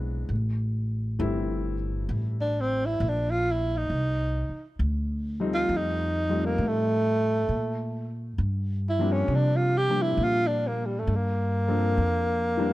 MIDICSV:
0, 0, Header, 1, 5, 480
1, 0, Start_track
1, 0, Tempo, 896861
1, 165, Time_signature, 4, 2, 24, 8
1, 6813, End_track
2, 0, Start_track
2, 0, Title_t, "Tenor saxophone"
2, 0, Program_c, 0, 66
2, 1289, Note_on_c, 0, 62, 76
2, 1396, Note_on_c, 0, 60, 82
2, 1404, Note_off_c, 0, 62, 0
2, 1527, Note_on_c, 0, 64, 76
2, 1535, Note_off_c, 0, 60, 0
2, 1652, Note_on_c, 0, 62, 76
2, 1660, Note_off_c, 0, 64, 0
2, 1770, Note_on_c, 0, 65, 88
2, 1778, Note_off_c, 0, 62, 0
2, 1885, Note_on_c, 0, 64, 79
2, 1893, Note_off_c, 0, 65, 0
2, 2017, Note_on_c, 0, 63, 68
2, 2025, Note_off_c, 0, 64, 0
2, 2492, Note_off_c, 0, 63, 0
2, 2966, Note_on_c, 0, 65, 83
2, 3086, Note_on_c, 0, 63, 76
2, 3094, Note_off_c, 0, 65, 0
2, 3453, Note_on_c, 0, 58, 69
2, 3461, Note_off_c, 0, 63, 0
2, 3573, Note_on_c, 0, 57, 90
2, 3581, Note_off_c, 0, 58, 0
2, 4352, Note_off_c, 0, 57, 0
2, 4759, Note_on_c, 0, 64, 77
2, 4880, Note_on_c, 0, 61, 71
2, 4888, Note_off_c, 0, 64, 0
2, 5004, Note_on_c, 0, 62, 76
2, 5012, Note_off_c, 0, 61, 0
2, 5120, Note_on_c, 0, 65, 83
2, 5128, Note_off_c, 0, 62, 0
2, 5232, Note_on_c, 0, 67, 97
2, 5240, Note_off_c, 0, 65, 0
2, 5364, Note_on_c, 0, 64, 82
2, 5372, Note_off_c, 0, 67, 0
2, 5480, Note_on_c, 0, 65, 98
2, 5488, Note_off_c, 0, 64, 0
2, 5605, Note_on_c, 0, 62, 81
2, 5613, Note_off_c, 0, 65, 0
2, 5714, Note_on_c, 0, 58, 77
2, 5722, Note_off_c, 0, 62, 0
2, 5811, Note_on_c, 0, 55, 66
2, 5819, Note_off_c, 0, 58, 0
2, 5885, Note_on_c, 0, 57, 70
2, 5893, Note_off_c, 0, 55, 0
2, 5970, Note_on_c, 0, 58, 82
2, 5978, Note_off_c, 0, 57, 0
2, 6813, Note_off_c, 0, 58, 0
2, 6813, End_track
3, 0, Start_track
3, 0, Title_t, "Grand piano"
3, 0, Program_c, 1, 0
3, 0, Control_c, 1, 64, 127
3, 0, Note_on_c, 1, 52, 69
3, 0, Note_on_c, 1, 56, 66
3, 0, Note_on_c, 1, 59, 70
3, 0, Note_on_c, 1, 60, 70
3, 0, Note_on_c, 1, 62, 72
3, 171, Control_c, 1, 64, 0
3, 172, Note_off_c, 1, 59, 0
3, 173, Note_off_c, 1, 52, 0
3, 173, Note_off_c, 1, 60, 0
3, 173, Note_off_c, 1, 62, 0
3, 176, Note_off_c, 1, 56, 0
3, 252, Control_c, 1, 64, 127
3, 637, Note_on_c, 1, 52, 71
3, 639, Note_on_c, 1, 57, 63
3, 640, Note_on_c, 1, 55, 61
3, 641, Note_on_c, 1, 60, 60
3, 645, Note_on_c, 1, 64, 80
3, 929, Note_off_c, 1, 52, 0
3, 930, Note_off_c, 1, 55, 0
3, 930, Note_off_c, 1, 57, 0
3, 931, Note_off_c, 1, 60, 0
3, 933, Note_off_c, 1, 64, 0
3, 2092, Control_c, 1, 64, 0
3, 2196, Control_c, 1, 64, 127
3, 2889, Note_on_c, 1, 53, 69
3, 2891, Note_on_c, 1, 55, 68
3, 2894, Note_on_c, 1, 57, 65
3, 2896, Note_on_c, 1, 63, 81
3, 2898, Note_on_c, 1, 60, 71
3, 3054, Control_c, 1, 64, 0
3, 3137, Control_c, 1, 64, 127
3, 3337, Note_off_c, 1, 53, 0
3, 3338, Note_off_c, 1, 55, 0
3, 3340, Note_off_c, 1, 57, 0
3, 3341, Note_off_c, 1, 63, 0
3, 3342, Note_off_c, 1, 60, 0
3, 3367, Note_on_c, 1, 53, 61
3, 3368, Note_on_c, 1, 55, 56
3, 3370, Note_on_c, 1, 57, 59
3, 3374, Note_on_c, 1, 63, 65
3, 3375, Note_on_c, 1, 60, 60
3, 3512, Note_off_c, 1, 53, 0
3, 3513, Note_off_c, 1, 55, 0
3, 3514, Note_off_c, 1, 57, 0
3, 3516, Note_off_c, 1, 63, 0
3, 3517, Note_off_c, 1, 60, 0
3, 4017, Control_c, 1, 64, 0
3, 4122, Control_c, 1, 64, 127
3, 4811, Note_on_c, 1, 55, 66
3, 4812, Note_on_c, 1, 53, 68
3, 4814, Note_on_c, 1, 58, 65
3, 4817, Note_on_c, 1, 60, 67
3, 4822, Note_on_c, 1, 62, 81
3, 5259, Note_off_c, 1, 55, 0
3, 5260, Note_off_c, 1, 53, 0
3, 5260, Note_off_c, 1, 58, 0
3, 5262, Note_off_c, 1, 60, 0
3, 5265, Note_off_c, 1, 62, 0
3, 5292, Note_on_c, 1, 53, 66
3, 5295, Note_on_c, 1, 55, 62
3, 5297, Note_on_c, 1, 58, 58
3, 5301, Note_on_c, 1, 62, 71
3, 5302, Note_on_c, 1, 60, 61
3, 5436, Note_off_c, 1, 53, 0
3, 5437, Note_off_c, 1, 55, 0
3, 5438, Note_off_c, 1, 58, 0
3, 5440, Note_off_c, 1, 62, 0
3, 5441, Note_off_c, 1, 60, 0
3, 5937, Control_c, 1, 64, 0
3, 6020, Control_c, 1, 64, 127
3, 6250, Note_on_c, 1, 53, 61
3, 6251, Note_on_c, 1, 69, 60
3, 6253, Note_on_c, 1, 58, 61
3, 6254, Note_on_c, 1, 60, 57
3, 6262, Note_on_c, 1, 62, 69
3, 6394, Note_off_c, 1, 53, 0
3, 6395, Note_off_c, 1, 58, 0
3, 6395, Note_off_c, 1, 69, 0
3, 6396, Note_off_c, 1, 60, 0
3, 6400, Note_off_c, 1, 62, 0
3, 6729, Note_on_c, 1, 52, 76
3, 6730, Note_on_c, 1, 55, 72
3, 6736, Note_on_c, 1, 58, 69
3, 6736, Note_on_c, 1, 60, 68
3, 6742, Note_on_c, 1, 62, 86
3, 6813, Note_off_c, 1, 52, 0
3, 6813, Note_off_c, 1, 55, 0
3, 6813, Note_off_c, 1, 58, 0
3, 6813, Note_off_c, 1, 60, 0
3, 6813, Note_off_c, 1, 62, 0
3, 6813, End_track
4, 0, Start_track
4, 0, Title_t, "Upright bass"
4, 0, Program_c, 2, 32
4, 0, Note_on_c, 2, 35, 80
4, 144, Note_off_c, 2, 35, 0
4, 154, Note_on_c, 2, 33, 79
4, 625, Note_off_c, 2, 33, 0
4, 640, Note_on_c, 2, 31, 90
4, 1108, Note_off_c, 2, 31, 0
4, 1117, Note_on_c, 2, 33, 84
4, 1587, Note_off_c, 2, 33, 0
4, 1607, Note_on_c, 2, 34, 89
4, 2072, Note_off_c, 2, 34, 0
4, 2086, Note_on_c, 2, 36, 77
4, 2385, Note_off_c, 2, 36, 0
4, 2565, Note_on_c, 2, 38, 84
4, 3032, Note_off_c, 2, 38, 0
4, 3044, Note_on_c, 2, 41, 81
4, 3513, Note_off_c, 2, 41, 0
4, 3523, Note_on_c, 2, 45, 81
4, 3993, Note_off_c, 2, 45, 0
4, 4007, Note_on_c, 2, 46, 71
4, 4475, Note_off_c, 2, 46, 0
4, 4487, Note_on_c, 2, 43, 83
4, 4955, Note_off_c, 2, 43, 0
4, 4967, Note_on_c, 2, 48, 84
4, 5435, Note_off_c, 2, 48, 0
4, 5445, Note_on_c, 2, 46, 86
4, 5913, Note_off_c, 2, 46, 0
4, 5927, Note_on_c, 2, 43, 86
4, 6393, Note_off_c, 2, 43, 0
4, 6409, Note_on_c, 2, 41, 86
4, 6813, Note_off_c, 2, 41, 0
4, 6813, End_track
5, 0, Start_track
5, 0, Title_t, "Muted upright bass strokes"
5, 2404, Note_on_c, 9, 29, 41
5, 2458, Note_off_c, 9, 29, 0
5, 6813, End_track
0, 0, End_of_file